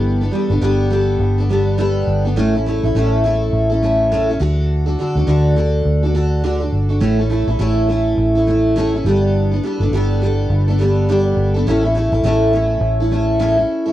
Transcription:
X:1
M:4/4
L:1/16
Q:"Swing 16ths" 1/4=103
K:Amix
V:1 name="Steel-string acoustic guitar"
[G,B,DA] [B,DA] [G,B,DA] [B,DA] [G,B,DA]2 [G,B,DA]3 [B,DA] [G,B,DA]2 [G,B,DA]3 [B,DA] | [A,,A,CEA] [CEA] [A,CEA] [CEA] [A,,A,CEA]2 [A,CEA]3 [CEA] [A,CEA]2 [A,,A,CEA] [CEA] [D,DFA]2- | [D,DFA] [DFA] [D,DFA] [DFA] [D,DFA]2 [D,DFA]3 [DFA] [D,DFA]2 [D,DFA] [DFA]2 [DFA] | [A,,A,CEA] [CEA] [A,CEA] [CEA] [A,,A,CEA]2 [A,CEA]3 [CEA] [A,CEA]2 [A,,A,CEA] [CEA] [G,B,DA]2- |
[G,B,DA] [B,DA] [G,B,DA] [B,DA] [G,B,DA]2 [G,B,DA]3 [B,DA] [G,B,DA]2 [G,B,DA]3 [B,DA] | [A,,A,CEA] [CEA] [A,CEA] [CEA] [A,,A,CEA]2 [A,CEA]3 [CEA] [A,CEA]2 [A,,A,CEA] [CEA]2 [CEA] |]
V:2 name="Fingered electric bass" clef=bass
G,,,2 z G,,, G,,,4 G,,,6 G,,,2 | A,,,3 A,,, A,,,4 A,,,6 D,,2- | D,,2 z D,, D,,4 D,,6 G,,,2 | A,,,3 A,,, A,,,4 A,,,6 G,,,2- |
G,,,2 z G,,, G,,,4 G,,,6 G,,,2 | A,,,3 A,,, A,,,4 A,,,6 z2 |]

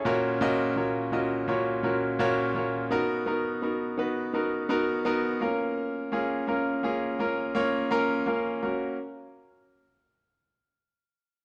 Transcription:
X:1
M:4/4
L:1/8
Q:1/4=84
K:Blyd
V:1 name="Grand piano"
[A,,CEFAc] [A,,CEFAd] [A,,CEFAc] [A,,CEFAd] [A,,CEFAc] [A,,CEFAc] [A,,CEFAc] [A,,CEFAc] | [B,DFA] [B,DFA] [B,DFA] [B,DFB] [B,DFA] [B,DFA] [B,DFA] [A,CEA]- | [A,CEA] [A,CEG] [A,CEA] [A,CEG] [A,CEA] [A,CEc] [A,CEAa] [A,CEAe] | [A,CFA] z6 z |]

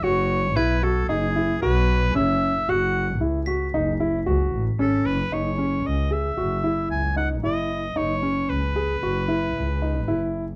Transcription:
X:1
M:5/4
L:1/8
Q:1/4=114
K:F#dor
V:1 name="Glockenspiel"
z2 g'4 z4 | z3 b'4 z3 | z8 z2 | z8 z2 |]
V:2 name="Oboe"
c2 B A G2 B2 e2 | f2 z6 A B | c2 d e3 g f d2 | c2 B6- B z |]
V:3 name="Grand piano"
F2 E F D E F2 C2 | F2 E F D E F2 C2 | D C2 G F E2 D E2 | D C2 G F E2 D E2 |]
V:4 name="Double bass" clef=bass
F,,,2 B,,,2 F,,,2 B,,,2 F,,,2 | F,,,2 C,,2 F,,,2 C,, A,,, G,,, F,,, | F,,,2 C,,2 F,,,2 C,,2 F,,,2 | F,,,2 C,,2 F,,,2 C,,2 F,,,2 |]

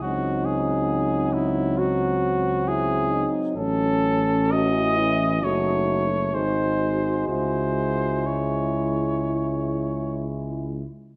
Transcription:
X:1
M:4/4
L:1/8
Q:1/4=65
K:C#m
V:1 name="Cornet"
F G2 E F2 G z | A2 d2 c2 ^B2 | ^B2 c4 z2 |]
V:2 name="Euphonium"
D4 F2 E D | C2 F E F z D2 | E6- E z |]
V:3 name="French horn section"
^B,8 | C4 D2 F2- | F2 E4- E z |]
V:4 name="Trombone" clef=bass
F,8- | F, z E,2 A,2 G,2- | G,6- G, z |]
V:5 name="Tuba" clef=bass
C,,6- C,, z | A,,,4 F,,,2 G,,,2 | C,,6- C,, z |]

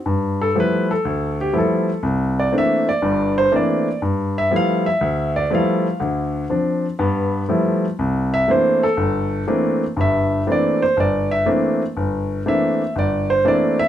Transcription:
X:1
M:4/4
L:1/8
Q:"Swing" 1/4=121
K:C
V:1 name="Grand piano"
z A B A2 G A2 | z d e d2 c d2 | z e f e2 d f2 | z8 |
z e c A3 z2 | e2 d c d e z2 | z2 e2 d c d e |]
V:2 name="Grand piano"
G,,2 [F,G,A,B,E] z D,,2 [F,G,A,B,E] z | C,,2 [E,A,_B,CD] z [G,,,G,,]2 [E,A,B,CD] z | G,,2 [F,G,A,B,E] z D,,2 [F,G,A,B,E] z | [D,,D,]2 [F,CD] z [G,,B,]2 [F,G,A,B,E] z |
C,,2 [E,A,_B,CD] z G,,,2 [E,A,B,CD] z | [G,,,G,,]2 [E,A,_B,CD] z G,,,2 [E,A,B,CD] z | G,,,2 [E,A,_B,CD] z G,,,2 [E,A,B,CD] z |]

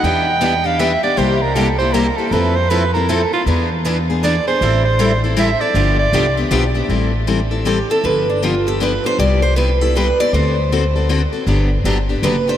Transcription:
X:1
M:3/4
L:1/16
Q:"Swing" 1/4=157
K:Ephr
V:1 name="Soprano saxophone"
g6 f2 e2 d2 | c2 _B2 A2 c2 B2 A2 | B2 c2 B2 _B2 A2 F2 | z8 d2 c2- |
c2 c4 z2 e2 d2- | d2 d4 z6 | [K:Am] z12 | z12 |
z12 | z12 | z12 |]
V:2 name="Steel-string acoustic guitar"
z12 | z12 | z12 | z12 |
z12 | z12 | [K:Am] z8 G2 A2 | B2 D2 F2 A2 B2 c2 |
d2 c2 B2 A2 B2 d2 | c8 z4 | z8 B2 c2 |]
V:3 name="Steel-string acoustic guitar"
[E,B,DG]2 z2 [E,B,DG] z [B,DG]2 [E,B,DG] z [B,DG]2 | [C,G,_B,EG]2 z2 [C,G,B,EG] z [B,EG]2 [C,G,B,EG] z [B,EG]2 | [F,CEA]2 z2 [F,CEA] z [CEA]2 [F,CEA] z [CEA]2 | [E,B,D^G]2 z2 [E,B,DG] z [B,DG]2 [E,B,DG] z [B,DG]2 |
[E,G,CEA]2 z2 [E,G,CEA] z [CEA]2 [E,G,CEA] z [CEA]2 | [D,F,B,DG]2 z2 [D,F,B,DG] z [B,DG]2 [D,F,B,DG] z [B,DG]2 | [K:Am] [E,G,CEA]2 z2 [E,G,CEA] z [CEA]2 [E,G,CEA] z [CEA]2 | [D,F,B,DG]2 z2 [D,F,B,DG] z [B,DG]2 [D,F,B,DG] z [B,DG]2 |
[C,G,B,EG]2 z2 [C,G,B,EG] z [B,EG]2 [C,G,B,EG] z [B,EG]2 | [D,A,C^FA]2 z2 [D,A,CFA] z [CFA]2 [D,A,CFA] z [CFA]2 | [D,^F,B,DG]2 z2 [D,F,B,DG] z [B,DG]2 [D,F,B,DG] z [B,DG]2 |]
V:4 name="Steel-string acoustic guitar"
[E,G,DEB]2 z2 [E,G,DEB] z3 [E,G,DEB] z3 | [C,G,_B,EG]2 z2 [C,G,B,EG] z3 [C,G,B,EG] z3 | [F,A,CEA]2 z2 [F,A,CEA] z3 [F,A,CEA] z3 | [E,B,D^GB]2 z2 [E,B,DGB] z3 [E,B,DGB] z3 |
[E,G,CEA]2 z2 [E,G,CEA] z3 [E,G,CEA] z3 | [D,F,B,DG]2 z2 [D,F,B,DG] z3 [D,F,B,DG] z3 | [K:Am] z12 | z12 |
z12 | z12 | [D,^F,B,DG]2 z2 [D,F,B,DG] z3 [D,F,B,DG] z3 |]
V:5 name="Upright bass" clef=bass
E,,12 | C,,12 | F,,12 | E,,12 |
A,,,12 | G,,,4 C,,4 B,,,4 | [K:Am] A,,,12 | G,,,12 |
C,,12 | D,,12 | G,,,4 G,,,4 ^F,,,4 |]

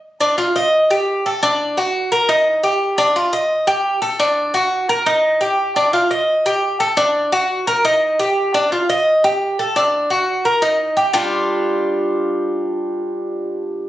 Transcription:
X:1
M:4/4
L:1/8
Q:1/4=173
K:Gm
V:1 name="Cuban tres"
z D F e2 G2 A | D2 ^F2 B E2 G- | G D F e2 G2 A | D2 ^F2 B E2 G- |
G D F e2 G2 A | D2 ^F2 B E2 G- | G D F e2 G2 A | D2 ^F2 B E2 G |
[G,DF]8- | [G,DF]8 |]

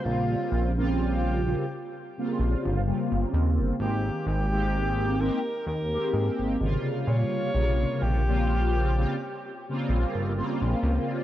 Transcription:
X:1
M:4/4
L:1/16
Q:"Swing 16ths" 1/4=64
K:Bbdor
V:1 name="Alto saxophone"
F2 z2 G4 z8 | G2 G4 B2 B4 z2 d2- | d2 G8 z6 |]
V:2 name="Analog polysynth"
[D,G,B,CF]3 [D,G,B,CF]3 [D,G,B,CF] z2 [D,G,B,CF]3 [D,G,B,CF]4 | [E,A,B,CG]3 [E,A,B,CG]3 [E,A,B,CG] z2 [E,A,B,CG]3 [C,D,G,B,F]4 | [C,D,G,B,F]3 [D,G,B,CF]3 [D,G,B,CF] z2 [D,G,B,CF]3 [D,G,B,CF]4 |]
V:3 name="Analog synth bass" clef=bass
B,,, z B,,,4 z4 B,,, G,,, z G,,, E,, G,,, | A,,, z A,,,4 z2 E,, z A,, A,,, A,,, z B,, z | B,,, z B,,,4 z4 B,,, G,,, z B,,, D,, z |]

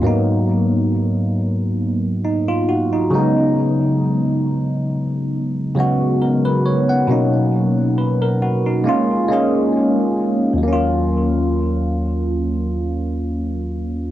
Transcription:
X:1
M:4/4
L:1/16
Q:"Swing 16ths" 1/4=68
K:Ebm
V:1 name="Tine electric piano"
z8 z2 E F G E2 z | z12 B c d g- | g z3 =B ^A ^F ^D2 z6 z | z16 |]
V:2 name="Tine electric piano"
[A,,G,B,CE]8 z6 [D,G,A,CE]2- | [D,G,A,CE]6 z4 [D,G,A,CG]6 | [=B,,^F,^A,D^D]8 [_A,_B,_D=F]2 [A,B,DA]6 | [E,,G,B,DF]16 |]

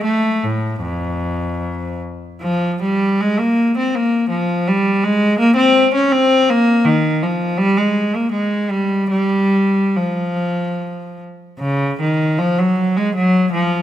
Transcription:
X:1
M:3/4
L:1/16
Q:1/4=78
K:Fphr
V:1 name="Cello" clef=bass
=A,2 =A,,2 F,,6 z2 | [K:Fm] F,2 G,2 A, B,2 C B,2 F,2 | G,2 A,2 B, C2 D C2 B,2 | E,2 F,2 G, A,2 B, A,2 G,2 |
G,4 F,6 z2 | [K:Gblyd] D,2 E,2 F, G,2 A, G,2 F,2 |]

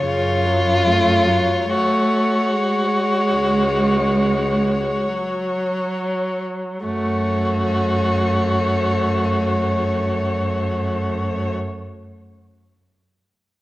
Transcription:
X:1
M:4/4
L:1/16
Q:1/4=35
K:F#m
V:1 name="Violin"
c16 | c16 |]
V:2 name="Violin"
^E4 F8- F2 z2 | F16 |]
V:3 name="Viola" clef=bass
C, F, A, F, A,2 G,6 F,4 | A,16 |]
V:4 name="Cello" clef=bass
F,,4 z4 C,,4 z4 | F,,16 |]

